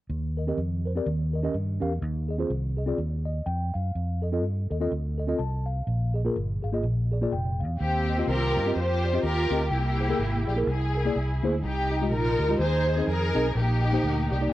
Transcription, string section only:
7.80 8.72 A#3 medium
7.80 8.72 C4 medium
7.80 8.25 G4 medium
8.29 8.76 F4 medium
8.29 8.76 G4 medium
8.29 8.73 A#4 loud
8.77 9.23 F4 medium
8.77 9.23 G4 medium
8.77 9.24 C5 medium
9.24 9.69 F4 medium
9.24 9.69 G4 medium
9.24 9.69 A#4 loud
9.72 10.64 A#3 medium
9.72 10.64 E4 medium
9.72 10.44 G4 medium
10.48 10.57 G4 medium
10.69 11.60 E4 medium
10.69 11.40 G#4 medium
11.64 12.11 D#4 medium
11.64 12.08 G4 medium
12.12 12.57 D#4 medium
12.12 12.57 F4 medium
12.12 12.57 A#4 loud
12.60 13.08 D#4 medium
12.60 13.52 G#4 medium
12.60 13.05 C5 loud
13.09 13.53 D#4 medium
13.09 13.53 A#4 loud
13.57 14.48 A#3 medium
13.57 14.48 D#4 medium
13.57 14.30 G4 loud
14.31 14.50 G4 medium

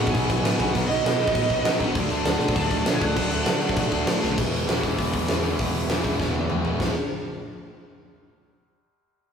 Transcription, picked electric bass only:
0.14 0.24 B1 loud
0.29 0.39 B1 medium
0.43 0.53 A2 medium
0.59 0.69 B1 medium
0.75 0.84 B1 loud
0.88 0.98 B1 loud
1.03 1.23 B2 loud
1.35 1.45 A2 loud
1.50 1.59 B1 loud
1.63 1.74 B2 medium
1.79 1.89 A1 medium
1.95 2.05 D2 loud
2.08 2.18 D2 medium
2.23 2.34 D2 loud
2.39 2.49 B2 loud
2.56 2.66 D2 loud
2.70 2.80 D2 loud
2.85 2.95 B2 loud
3.01 3.11 D2 loud
3.16 3.26 D2 medium
3.31 3.41 D2 medium
3.46 3.66 D3 medium
3.77 3.87 B2 loud
3.92 4.01 D2 medium
4.09 4.18 D3 medium
4.23 4.33 B1 medium
4.37 4.48 E1 medium
4.53 4.64 E1 medium
4.68 4.79 E1 medium
4.83 4.94 E1 medium
4.98 5.09 E1 medium
5.13 5.24 E2 medium
5.28 5.50 E2 medium
5.59 5.70 E1 medium
5.73 5.85 E1 medium
5.88 5.99 E1 medium
6.04 6.15 E1 medium
6.19 6.30 E1 medium
6.34 6.45 E2 medium
6.48 6.70 E2 medium
6.80 6.94 E1 medium

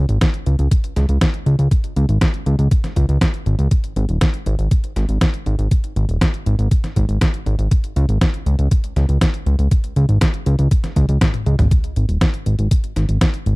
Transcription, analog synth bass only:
0.09 0.18 G#1 medium
0.46 0.56 C#2 medium
0.59 0.68 C#2 medium
0.96 1.06 C#2 loud
1.09 1.18 C#2 medium
1.46 1.56 C#2 medium
1.59 1.68 C#2 medium
1.96 2.06 C#2 loud
2.09 2.18 G#1 medium
2.46 2.56 C#2 medium
2.59 2.68 C#2 medium
2.96 3.06 C#2 loud
3.09 3.18 C#2 medium
3.46 3.56 G#1 loud
3.59 3.68 C#2 medium
3.96 4.06 G#1 medium
4.09 4.18 D#1 medium
4.46 4.56 G#1 medium
4.59 4.68 G#1 medium
4.96 5.06 G#1 loud
5.09 5.18 G#1 medium
5.46 5.56 G#1 medium
5.59 5.68 G#1 medium
5.96 6.06 G#1 medium
6.09 6.18 D#1 medium
6.46 6.56 G#1 medium
6.59 6.68 G#1 medium
6.96 7.06 G#1 loud
7.09 7.18 G#1 medium
7.46 7.56 G#1 medium
7.59 7.68 G#1 medium
7.96 8.06 C#2 loud
8.09 8.18 G#1 medium
8.46 8.56 C#2 loud
8.59 8.68 C#2 medium
8.96 9.06 C#2 loud
9.09 9.18 C#2 medium
9.46 9.56 C#2 medium
9.59 9.68 C#2 medium
9.96 10.06 C#2 medium
10.09 10.18 G#1 medium
10.46 10.56 C#2 loud
10.59 10.68 C#2 medium
10.96 11.06 C#2 loud
11.09 11.18 C#2 medium
11.46 11.56 C#2 loud
11.59 11.68 G#1 medium
11.96 12.06 G#1 medium
12.09 12.18 D#1 medium
12.46 12.56 G#1 medium
12.59 12.68 G#1 medium
12.96 13.06 G#1 loud
13.09 13.18 G#1 medium
13.46 13.56 G#1 medium

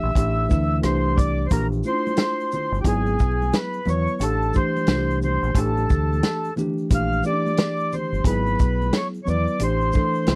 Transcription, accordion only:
0.00 0.80 E5 loud
0.84 1.19 C5 medium
1.17 1.47 D5 medium
1.46 1.51 C5 medium
1.52 1.67 A#4 loud
1.87 2.53 C5 loud
2.54 2.80 C5 loud
2.81 2.86 G4 medium
2.87 3.56 G#4 medium
3.55 3.89 B4 medium
3.89 4.23 C#5 loud
4.23 4.56 A4 loud
4.57 5.19 C5 loud
5.25 5.58 C5 medium
5.58 6.54 A4 medium
6.95 7.24 F5 loud
7.26 7.95 D5 loud
7.94 8.24 C5 medium
8.27 8.96 B4 loud
8.95 9.07 C#5 medium
9.23 9.28 C#5 medium
9.29 9.62 D5 loud
9.64 10.35 C5 loud

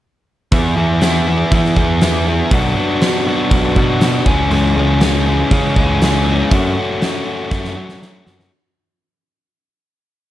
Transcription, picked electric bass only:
0.52 0.74 E2 medium
0.77 1.42 E2 medium
1.52 1.73 E3 medium
1.76 2.42 E2 medium
2.51 2.73 B1 loud
3.51 3.73 B1 medium
3.76 4.20 B2 medium
4.26 4.48 C#2 medium
4.51 4.73 C#2 loud
4.76 5.42 C#2 medium
5.51 5.73 C#3 medium
5.77 6.42 C#2 medium
6.52 6.74 F#2 medium
7.51 7.73 F#2 medium
7.77 8.20 F#3 medium
8.27 8.48 F#2 medium

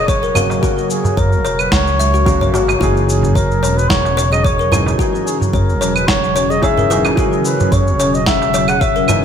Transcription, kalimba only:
0.08 0.21 C#5 loud
0.23 0.34 A#4 medium
0.35 0.62 A#4 medium
0.63 1.16 F#4 loud
1.17 1.31 C#5 medium
1.45 1.59 C#5 medium
1.72 1.85 F#5 loud
2.00 2.13 E5 medium
2.14 2.25 F#4 medium
2.26 2.40 F#4 medium
2.41 2.53 C#5 medium
2.54 2.68 F#4 medium
2.81 3.34 F#4 loud
3.36 3.50 C#5 medium
3.63 3.77 C#5 medium
3.90 4.16 F#5 loud
4.17 4.31 C#5 loud
4.32 4.44 G#4 medium
4.45 4.58 C#5 medium
4.59 4.71 A#4 medium
4.72 4.98 B4 medium
4.99 5.52 F#4 loud
5.54 5.68 C#5 medium
5.81 5.95 C#5 medium
6.08 6.34 F#5 loud
6.36 6.50 C#5 loud
6.50 6.62 G#4 medium
6.63 6.76 C#5 medium
6.78 6.89 A#4 medium
6.90 7.16 B4 medium
7.18 7.71 F#4 loud
7.72 7.86 C#5 medium
8.00 8.13 C#5 medium
8.27 8.53 F#5 loud
8.54 8.68 C#5 loud
8.69 8.81 G#4 medium
8.81 8.94 C#5 loud
8.96 9.07 A#4 medium
9.08 9.25 B4 medium

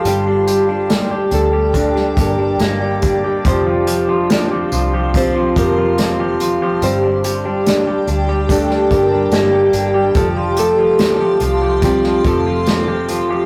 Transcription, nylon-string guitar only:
0.07 1.29 G3 medium
0.07 1.34 G4 loud
1.33 2.14 A3 medium
1.33 2.14 A4 medium
2.20 3.43 A#3 medium
2.20 3.06 A#4 medium
3.06 3.47 A4 medium
3.47 4.27 C4 medium
3.47 4.27 C5 loud
4.32 5.11 D4 medium
4.32 5.12 D5 loud
5.16 5.54 C4 medium
5.16 5.58 C5 loud
5.58 6.79 A#3 medium
5.58 6.84 A#4 medium
6.83 7.62 C4 medium
6.83 7.68 C5 loud
7.68 8.46 D4 medium
7.68 8.46 D5 loud
8.51 8.89 A3 medium
8.51 8.93 A4 loud
8.93 10.12 A#3 medium
8.93 10.16 A#4 medium
10.16 10.27 A3 medium
10.16 10.28 A4 loud
10.59 11.80 A3 medium
10.59 11.85 A4 loud
11.85 12.23 G3 medium
11.85 12.23 G4 loud
12.26 13.46 A3 medium
12.26 13.46 A4 medium

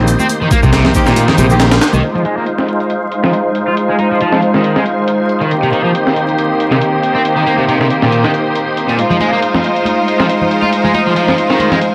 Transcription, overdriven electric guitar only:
0.20 0.26 C4 medium
0.42 0.47 D#3 medium
0.52 0.59 A#3 medium
0.64 0.69 C3 medium
0.73 0.84 C3 medium
0.85 0.91 C3 medium
1.07 1.27 A#2 medium
1.28 1.34 D#3 medium
1.39 1.46 C3 medium
1.94 2.03 D#3 medium
2.15 2.21 F3 medium
2.25 2.36 G#3 medium
2.37 2.43 A#3 medium
3.24 3.30 F3 medium
3.67 3.73 F4 medium
3.89 3.95 G#3 medium
3.99 4.06 D#4 medium
4.11 4.17 F3 medium
4.21 4.32 F3 medium
4.33 4.39 F3 medium
4.55 4.75 D#3 medium
4.76 4.82 G#3 medium
5.41 5.51 D#3 medium
5.63 5.69 C3 medium
5.73 5.84 D#3 medium
5.85 5.91 F3 medium
6.72 6.78 C3 medium
7.15 7.21 C4 medium
7.37 7.43 D#3 medium
7.47 7.54 A#3 medium
7.59 7.65 C3 medium
7.69 7.79 C3 medium
7.80 7.86 C3 medium
8.02 8.23 A#2 medium
8.24 8.30 D#3 medium
8.89 8.99 A#2 medium
9.11 9.17 F3 medium
9.21 9.32 G#3 medium
9.33 9.39 A#3 medium
10.20 10.26 F3 medium
10.63 10.69 F4 medium
10.85 10.91 G#3 medium
10.95 11.02 D#4 medium
11.07 11.13 F3 medium
11.16 11.27 F3 medium
11.28 11.34 F3 medium
11.50 11.71 D#3 medium
11.71 11.78 G#3 medium

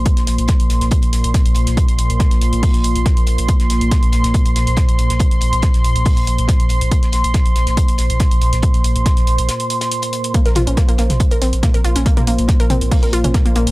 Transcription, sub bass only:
0.17 0.27 A#1 medium
0.27 0.38 A#1 loud
0.39 0.48 A#1 medium
0.60 0.70 A#1 medium
0.70 0.81 A#1 loud
0.81 0.91 A#1 medium
1.03 1.12 A#1 medium
1.13 1.24 A#1 loud
1.24 1.34 A#1 medium
1.46 1.55 A#1 medium
1.56 1.66 A#1 loud
1.67 1.77 A#1 medium
1.89 1.98 A#1 medium
1.99 2.09 A#1 loud
2.10 2.20 A#1 medium
2.31 2.41 A#1 medium
2.41 2.52 A#1 medium
2.53 2.63 A#1 medium
2.74 2.84 A#1 medium
2.84 2.95 A#1 loud
2.96 3.06 A#1 medium
3.17 3.27 A#1 medium
3.27 3.38 A#1 loud
3.38 3.48 A#1 medium
3.60 3.69 A#1 medium
3.70 3.81 A#1 loud
3.81 3.91 A#1 medium
4.03 4.12 A#1 medium
4.13 4.24 A#1 loud
4.24 4.34 A#1 medium
4.46 4.55 A#1 medium
4.56 4.66 A#1 loud
4.67 4.77 A#1 medium
4.88 4.98 A#1 medium
4.99 5.09 A#1 loud
5.10 5.20 A#1 medium
5.31 5.41 A#1 medium
5.42 5.52 A#1 loud
5.53 5.63 A#1 medium
5.74 5.84 A#1 medium
5.84 5.95 A#1 loud
5.96 6.06 A#1 medium
6.17 6.27 A#1 medium
6.27 6.38 A#1 medium
6.39 6.49 A#1 medium
6.60 6.70 A#1 medium
6.70 6.81 A#1 loud
6.81 6.91 A#1 medium
7.03 7.12 A#1 medium
7.13 7.24 A#1 loud
7.24 7.34 A#1 medium
7.46 7.55 A#1 medium
7.56 7.66 A#1 loud
7.67 7.77 A#1 medium
7.89 7.98 A#1 medium
7.99 8.09 A#1 loud
8.10 8.20 A#1 medium
8.31 8.41 A#1 medium
8.41 8.52 A#1 loud
8.53 8.63 A#1 medium
8.74 8.84 A#1 medium
8.84 8.95 A#1 loud
8.96 9.06 A#1 medium
9.17 9.27 A#1 medium
9.27 9.38 A#1 loud
9.38 9.48 A#1 medium
10.46 10.55 A#1 medium
10.56 10.67 A#1 loud
10.67 10.77 A#1 medium
10.89 10.98 A#1 medium
10.99 11.09 A#1 loud
11.10 11.20 A#1 medium
11.31 11.41 A#1 medium
11.42 11.52 A#1 medium
11.53 11.63 A#1 medium
11.74 11.84 A#1 medium
11.84 11.95 A#1 loud
11.96 12.06 A#1 medium
12.17 12.27 A#1 medium
12.27 12.38 A#1 loud
12.39 12.49 A#1 medium
12.60 12.70 A#1 medium
12.70 12.81 A#1 loud
12.81 12.91 A#1 medium
13.03 13.12 A#1 medium
13.13 13.24 A#1 loud
13.24 13.34 A#1 medium
13.46 13.55 A#1 medium
13.56 13.66 A#1 loud
13.67 13.71 A#1 medium

